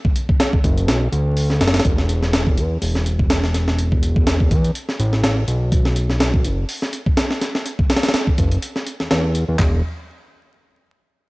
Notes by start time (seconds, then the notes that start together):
0.05 kick
0.16 closed hi-hat
0.29 kick
0.40 snare, closed hi-hat
0.53 kick
0.64 F#1, kick, closed hi-hat
0.78 closed hi-hat
0.88 B1, snare, closed hi-hat
1.12 D2, closed hi-hat
1.37 open hi-hat
1.50 snare
1.61 F#1, snare, closed hi-hat
1.67 snare, closed hi-hat
1.74 snare, closed hi-hat
1.80 snare, closed hi-hat
1.85 E1, kick, closed hi-hat
1.98 snare
2.09 closed hi-hat
2.23 snare
2.33 snare, closed hi-hat
2.47 kick
2.58 E2, closed hi-hat
2.82 E1, open hi-hat
2.95 snare
3.06 closed hi-hat
3.19 kick
3.30 snare, closed hi-hat
3.44 snare
3.54 snare, closed hi-hat
3.68 snare
3.79 closed hi-hat
3.92 kick
4.03 closed hi-hat
4.16 kick
4.27 snare, closed hi-hat
4.40 kick
4.51 E2, kick, closed hi-hat
4.64 closed hi-hat
4.75 closed hi-hat
4.89 snare
5.00 A1, closed hi-hat
5.13 snare
5.24 snare, closed hi-hat
5.48 B1, closed hi-hat
5.72 kick, closed hi-hat
5.85 snare
5.96 closed hi-hat
6.10 snare
6.20 snare, closed hi-hat
6.34 kick
6.45 F#1, closed hi-hat
6.69 open hi-hat
6.82 snare
6.93 closed hi-hat
7.06 kick
7.17 snare, closed hi-hat
7.31 snare
7.41 snare, closed hi-hat
7.55 snare
7.66 closed hi-hat
7.79 kick
7.90 snare, closed hi-hat
7.97 snare, closed hi-hat
8.03 snare, closed hi-hat
8.09 snare, closed hi-hat
8.14 snare, closed hi-hat
8.27 kick
8.38 F#1, kick, closed hi-hat
8.52 closed hi-hat
8.62 closed hi-hat
8.76 snare
8.87 closed hi-hat
9.00 E2, snare
9.11 E2, snare, closed hi-hat
9.35 closed hi-hat
9.48 E2
9.59 E1, kick, clap, floor tom